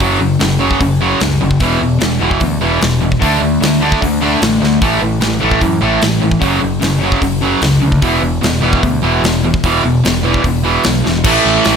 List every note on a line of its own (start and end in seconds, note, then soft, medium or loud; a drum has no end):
0.00 0.17 F#1 medium
0.00 0.19 F#2 medium
0.00 0.19 C#3 medium
0.00 0.20 F#3 loud
0.00 kick medium
0.19 0.36 F#1 medium
0.19 0.38 F#2 medium
0.19 0.38 C#3 medium
0.39 0.73 F#1 medium
0.39 0.58 F#2 medium
0.39 0.58 C#3 medium
0.39 snare loud
0.39 open hi-hat medium
0.59 0.79 F#2 medium
0.59 0.80 C#3 medium
0.59 0.79 F#3 medium
0.71 kick medium
0.80 1.13 F#1 medium
0.80 0.99 F#2 medium
0.80 0.99 C#3 medium
0.80 kick medium
0.80 open hi-hat medium
1.01 1.19 F#2 medium
1.01 1.20 C#3 medium
1.01 1.20 F#3 medium
1.20 1.37 C#2 medium
1.20 1.39 F#2 medium
1.20 1.39 C#3 medium
1.20 snare loud
1.20 open hi-hat medium
1.41 1.58 F#1 medium
1.41 1.59 F#2 medium
1.41 1.60 C#3 medium
1.51 kick medium
1.60 1.77 E1 medium
1.60 1.79 E2 medium
1.60 1.80 B2 medium
1.60 1.80 E3 medium
1.60 kick loud
1.60 open hi-hat medium
1.81 1.97 E1 medium
1.81 1.98 E2 medium
1.81 1.98 B2 medium
1.99 2.18 E1 medium
1.99 2.18 E2 medium
1.99 2.18 B2 medium
1.99 snare loud
1.99 open hi-hat medium
2.19 2.37 E1 medium
2.19 2.39 E2 medium
2.19 2.40 B2 medium
2.19 2.40 E3 medium
2.31 kick medium
2.40 2.57 D2 medium
2.40 2.59 E2 medium
2.40 2.59 B2 medium
2.40 kick medium
2.40 open hi-hat soft
2.61 2.78 E1 medium
2.61 2.80 E2 medium
2.61 2.80 B2 medium
2.61 2.81 E3 medium
2.81 3.15 E1 medium
2.81 2.99 E2 medium
2.81 2.99 B2 medium
2.81 snare loud
2.81 open hi-hat medium
3.00 3.19 E2 medium
3.00 3.19 B2 medium
3.12 kick medium
3.19 3.38 D2 medium
3.19 3.37 D3 medium
3.19 3.38 A3 loud
3.19 3.40 D4 medium
3.19 kick medium
3.19 open hi-hat medium
3.39 3.58 D2 medium
3.39 3.58 D3 medium
3.39 3.59 A3 medium
3.60 3.94 D2 medium
3.60 3.79 D3 medium
3.60 3.79 A3 medium
3.60 snare loud
3.60 open hi-hat medium
3.80 4.00 D3 medium
3.80 4.00 A3 medium
3.80 4.00 D4 medium
3.92 kick medium
4.02 4.34 D2 medium
4.02 4.19 D3 medium
4.02 4.20 A3 medium
4.02 kick medium
4.02 open hi-hat medium
4.21 4.39 D3 medium
4.21 4.40 A3 medium
4.21 4.41 D4 medium
4.40 4.58 A1 medium
4.40 4.59 D3 medium
4.40 4.59 A3 medium
4.40 snare loud
4.40 open hi-hat medium
4.60 4.78 D2 medium
4.60 4.79 D3 medium
4.60 4.79 A3 medium
4.60 snare medium
4.81 4.98 A1 medium
4.81 4.99 A2 medium
4.81 5.00 E3 medium
4.81 5.01 A3 medium
4.81 kick loud
4.81 open hi-hat medium
5.00 5.18 A1 medium
5.00 5.19 A2 medium
5.00 5.20 E3 medium
5.21 5.37 A1 medium
5.21 5.39 A2 medium
5.21 5.39 E3 medium
5.21 snare loud
5.21 open hi-hat medium
5.40 5.59 A1 medium
5.40 5.60 A2 medium
5.40 5.60 E3 loud
5.40 5.60 A3 medium
5.51 kick medium
5.61 5.78 F#2 medium
5.61 5.79 A2 medium
5.61 5.80 E3 medium
5.61 kick medium
5.61 open hi-hat soft
5.81 5.98 A1 medium
5.81 5.99 A2 medium
5.81 5.99 E3 medium
5.81 6.01 A3 loud
6.00 6.35 A1 medium
6.00 6.19 A2 medium
6.00 6.19 E3 medium
6.00 snare loud
6.00 open hi-hat medium
6.20 6.39 A2 medium
6.20 6.40 E3 medium
6.31 kick medium
6.39 6.58 F#1 medium
6.39 6.59 F#2 medium
6.39 6.59 C#3 loud
6.39 6.60 F#3 loud
6.39 kick medium
6.39 open hi-hat soft
6.60 6.79 F#1 medium
6.60 6.79 F#2 medium
6.60 6.79 C#3 medium
6.80 7.15 F#1 medium
6.80 6.98 F#2 medium
6.80 6.98 C#3 medium
6.80 snare loud
6.80 open hi-hat medium
6.99 7.19 F#2 medium
6.99 7.19 C#3 medium
6.99 7.20 F#3 medium
7.12 kick medium
7.20 7.54 F#1 medium
7.20 7.39 F#2 medium
7.20 7.39 C#3 medium
7.20 kick medium
7.20 open hi-hat medium
7.41 7.60 F#2 medium
7.41 7.61 C#3 medium
7.41 7.61 F#3 medium
7.62 7.78 C#2 medium
7.62 7.79 F#2 medium
7.62 7.80 C#3 medium
7.62 snare loud
7.62 open hi-hat medium
7.80 7.99 D2 medium
7.80 7.99 F#2 medium
7.80 8.00 C#3 medium
7.92 kick medium
8.02 8.19 E1 medium
8.02 8.21 E2 medium
8.02 8.20 B2 medium
8.02 8.21 E3 medium
8.02 kick loud
8.02 open hi-hat medium
8.21 8.38 E1 medium
8.21 8.40 E2 medium
8.21 8.40 B2 medium
8.41 8.59 E1 medium
8.41 8.60 E2 medium
8.41 8.60 B2 medium
8.41 snare loud
8.41 open hi-hat medium
8.62 8.78 E1 medium
8.62 8.81 E2 medium
8.62 8.81 B2 medium
8.62 8.82 E3 loud
8.73 kick medium
8.83 8.99 D2 medium
8.83 9.01 E2 medium
8.83 9.01 B2 medium
8.83 kick medium
8.83 open hi-hat medium
9.03 9.19 E1 medium
9.03 9.22 E2 medium
9.03 9.22 B2 medium
9.03 9.22 E3 medium
9.22 9.55 E1 medium
9.22 9.41 E2 medium
9.22 9.42 B2 medium
9.22 snare loud
9.22 open hi-hat medium
9.44 9.62 E2 medium
9.44 9.62 B2 medium
9.54 kick medium
9.64 9.80 E1 medium
9.64 9.83 E2 medium
9.64 9.84 B2 medium
9.64 9.83 E3 loud
9.64 kick medium
9.64 open hi-hat medium
9.84 10.00 E1 medium
9.84 10.02 E2 medium
9.84 10.03 B2 medium
10.05 10.37 E1 medium
10.05 10.22 E2 medium
10.05 10.23 B2 medium
10.05 snare loud
10.05 open hi-hat medium
10.24 10.42 E2 medium
10.24 10.42 B2 medium
10.24 10.44 E3 medium
10.34 kick medium
10.43 10.77 E1 medium
10.43 10.62 E2 medium
10.43 10.62 B2 medium
10.43 kick medium
10.43 open hi-hat medium
10.64 10.83 E2 medium
10.64 10.83 B2 medium
10.64 10.83 E3 medium
10.84 11.02 B1 medium
10.84 11.02 E2 medium
10.84 11.03 B2 medium
10.84 snare loud
10.84 open hi-hat medium
11.05 11.22 E1 medium
11.05 11.23 E2 medium
11.05 11.23 B2 medium
11.05 snare medium
11.24 11.37 A1 medium
11.24 11.76 A2 medium
11.24 11.76 E3 loud
11.24 11.76 A3 loud
11.24 kick loud
11.24 crash loud
11.46 11.58 A1 medium
11.64 11.76 A1 medium
11.64 snare loud
11.64 open hi-hat medium